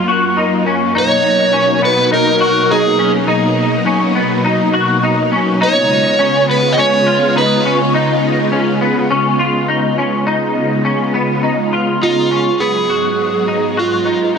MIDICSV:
0, 0, Header, 1, 4, 480
1, 0, Start_track
1, 0, Tempo, 582524
1, 782, Time_signature, 4, 2, 24, 8
1, 11851, End_track
2, 0, Start_track
2, 0, Title_t, "Electric slide guitar"
2, 0, Program_c, 0, 29
2, 810, Note_on_c, 0, 73, 98
2, 1522, Note_off_c, 0, 73, 0
2, 1525, Note_on_c, 0, 71, 91
2, 1757, Note_off_c, 0, 71, 0
2, 1760, Note_on_c, 0, 70, 83
2, 2235, Note_on_c, 0, 68, 70
2, 2245, Note_off_c, 0, 70, 0
2, 2564, Note_off_c, 0, 68, 0
2, 4641, Note_on_c, 0, 73, 97
2, 5319, Note_off_c, 0, 73, 0
2, 5364, Note_on_c, 0, 71, 96
2, 5540, Note_off_c, 0, 71, 0
2, 5542, Note_on_c, 0, 75, 72
2, 5591, Note_off_c, 0, 75, 0
2, 5599, Note_on_c, 0, 73, 91
2, 6078, Note_off_c, 0, 73, 0
2, 6081, Note_on_c, 0, 71, 70
2, 6407, Note_off_c, 0, 71, 0
2, 9914, Note_on_c, 0, 65, 76
2, 10385, Note_on_c, 0, 68, 76
2, 10402, Note_off_c, 0, 65, 0
2, 11366, Note_on_c, 0, 65, 68
2, 11372, Note_off_c, 0, 68, 0
2, 11836, Note_off_c, 0, 65, 0
2, 11851, End_track
3, 0, Start_track
3, 0, Title_t, "Clean electric guitar"
3, 0, Program_c, 1, 27
3, 65, Note_on_c, 1, 66, 77
3, 303, Note_off_c, 1, 66, 0
3, 304, Note_on_c, 1, 63, 74
3, 543, Note_off_c, 1, 63, 0
3, 547, Note_on_c, 1, 61, 70
3, 780, Note_off_c, 1, 61, 0
3, 783, Note_on_c, 1, 63, 100
3, 1256, Note_off_c, 1, 63, 0
3, 1259, Note_on_c, 1, 61, 75
3, 1497, Note_off_c, 1, 61, 0
3, 1500, Note_on_c, 1, 59, 67
3, 1741, Note_off_c, 1, 59, 0
3, 1744, Note_on_c, 1, 63, 80
3, 1981, Note_on_c, 1, 66, 77
3, 1983, Note_off_c, 1, 63, 0
3, 2222, Note_off_c, 1, 66, 0
3, 2228, Note_on_c, 1, 63, 75
3, 2460, Note_off_c, 1, 63, 0
3, 2464, Note_on_c, 1, 61, 64
3, 2699, Note_off_c, 1, 61, 0
3, 2702, Note_on_c, 1, 63, 91
3, 3178, Note_off_c, 1, 63, 0
3, 3181, Note_on_c, 1, 61, 78
3, 3418, Note_off_c, 1, 61, 0
3, 3422, Note_on_c, 1, 59, 79
3, 3659, Note_off_c, 1, 59, 0
3, 3663, Note_on_c, 1, 63, 82
3, 3902, Note_off_c, 1, 63, 0
3, 3902, Note_on_c, 1, 66, 76
3, 4142, Note_off_c, 1, 66, 0
3, 4148, Note_on_c, 1, 63, 81
3, 4379, Note_off_c, 1, 63, 0
3, 4382, Note_on_c, 1, 61, 66
3, 4618, Note_off_c, 1, 61, 0
3, 4621, Note_on_c, 1, 63, 95
3, 5098, Note_off_c, 1, 63, 0
3, 5101, Note_on_c, 1, 61, 77
3, 5336, Note_off_c, 1, 61, 0
3, 5339, Note_on_c, 1, 59, 67
3, 5580, Note_off_c, 1, 59, 0
3, 5585, Note_on_c, 1, 61, 95
3, 5823, Note_off_c, 1, 61, 0
3, 5823, Note_on_c, 1, 65, 79
3, 6062, Note_off_c, 1, 65, 0
3, 6062, Note_on_c, 1, 63, 78
3, 6302, Note_off_c, 1, 63, 0
3, 6306, Note_on_c, 1, 61, 76
3, 6542, Note_off_c, 1, 61, 0
3, 6545, Note_on_c, 1, 63, 88
3, 7016, Note_off_c, 1, 63, 0
3, 7019, Note_on_c, 1, 61, 72
3, 7257, Note_off_c, 1, 61, 0
3, 7261, Note_on_c, 1, 59, 69
3, 7499, Note_off_c, 1, 59, 0
3, 7502, Note_on_c, 1, 61, 85
3, 7741, Note_on_c, 1, 65, 80
3, 7742, Note_off_c, 1, 61, 0
3, 7979, Note_on_c, 1, 63, 80
3, 7981, Note_off_c, 1, 65, 0
3, 8220, Note_off_c, 1, 63, 0
3, 8224, Note_on_c, 1, 61, 72
3, 8457, Note_off_c, 1, 61, 0
3, 8460, Note_on_c, 1, 63, 89
3, 8936, Note_off_c, 1, 63, 0
3, 8939, Note_on_c, 1, 61, 75
3, 9175, Note_off_c, 1, 61, 0
3, 9179, Note_on_c, 1, 59, 69
3, 9415, Note_off_c, 1, 59, 0
3, 9418, Note_on_c, 1, 63, 74
3, 9660, Note_off_c, 1, 63, 0
3, 9664, Note_on_c, 1, 65, 73
3, 9903, Note_off_c, 1, 65, 0
3, 9907, Note_on_c, 1, 63, 66
3, 10141, Note_off_c, 1, 63, 0
3, 10144, Note_on_c, 1, 61, 55
3, 10381, Note_off_c, 1, 61, 0
3, 10384, Note_on_c, 1, 59, 68
3, 10623, Note_off_c, 1, 59, 0
3, 10625, Note_on_c, 1, 66, 49
3, 11103, Note_off_c, 1, 66, 0
3, 11107, Note_on_c, 1, 63, 55
3, 11344, Note_off_c, 1, 63, 0
3, 11348, Note_on_c, 1, 66, 67
3, 11580, Note_on_c, 1, 63, 63
3, 11585, Note_off_c, 1, 66, 0
3, 11812, Note_off_c, 1, 63, 0
3, 11822, Note_on_c, 1, 63, 58
3, 11851, Note_off_c, 1, 63, 0
3, 11851, End_track
4, 0, Start_track
4, 0, Title_t, "String machine"
4, 0, Program_c, 2, 50
4, 0, Note_on_c, 2, 42, 75
4, 0, Note_on_c, 2, 54, 60
4, 0, Note_on_c, 2, 58, 64
4, 0, Note_on_c, 2, 65, 75
4, 742, Note_off_c, 2, 54, 0
4, 745, Note_off_c, 2, 42, 0
4, 746, Note_off_c, 2, 65, 0
4, 788, Note_on_c, 2, 63, 73
4, 789, Note_on_c, 2, 47, 70
4, 792, Note_on_c, 2, 54, 67
4, 4583, Note_off_c, 2, 58, 0
4, 4592, Note_off_c, 2, 63, 0
4, 4593, Note_off_c, 2, 47, 0
4, 4594, Note_off_c, 2, 54, 0
4, 4624, Note_on_c, 2, 56, 68
4, 4625, Note_on_c, 2, 65, 74
4, 4627, Note_on_c, 2, 49, 80
4, 4627, Note_on_c, 2, 59, 66
4, 8430, Note_off_c, 2, 56, 0
4, 8430, Note_off_c, 2, 65, 0
4, 8431, Note_off_c, 2, 59, 0
4, 8432, Note_off_c, 2, 49, 0
4, 8454, Note_on_c, 2, 65, 77
4, 8458, Note_on_c, 2, 49, 64
4, 8459, Note_on_c, 2, 56, 68
4, 8459, Note_on_c, 2, 59, 62
4, 10359, Note_off_c, 2, 65, 0
4, 10360, Note_off_c, 2, 49, 0
4, 10361, Note_off_c, 2, 56, 0
4, 10361, Note_off_c, 2, 59, 0
4, 10376, Note_on_c, 2, 54, 73
4, 10379, Note_on_c, 2, 44, 66
4, 10383, Note_on_c, 2, 56, 56
4, 10385, Note_on_c, 2, 59, 57
4, 11851, Note_off_c, 2, 44, 0
4, 11851, Note_off_c, 2, 54, 0
4, 11851, Note_off_c, 2, 56, 0
4, 11851, Note_off_c, 2, 59, 0
4, 11851, End_track
0, 0, End_of_file